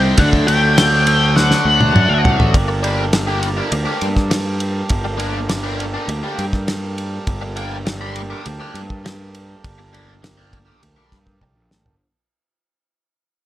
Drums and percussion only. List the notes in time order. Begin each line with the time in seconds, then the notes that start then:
0.18 kick, ride
0.33 kick
0.48 ride
0.78 snare, ride
1.07 ride
1.37 snare
1.51 snare
1.81 high tom
1.96 mid tom
2.25 floor tom
2.40 floor tom
2.54 kick, ride
2.84 ride
3.13 snare, ride
3.43 ride
3.72 ride
4.01 ride
4.16 kick, snare
4.31 snare, ride
4.60 ride
4.89 kick, ride
5.20 ride
5.49 snare, ride
5.80 ride
6.09 ride
6.39 ride
6.53 kick, snare
6.68 snare, ride
6.98 ride
7.27 kick, ride
7.57 ride
7.87 snare, ride
8.16 ride
8.46 ride
8.75 ride
8.90 kick
9.06 snare, ride
9.35 ride
9.64 kick, ride
9.94 ride
10.24 snare, ride
10.53 kick, ride
10.83 ride
11.12 kick, snare, ride
11.27 kick
11.41 kick
11.71 snare
11.86 floor tom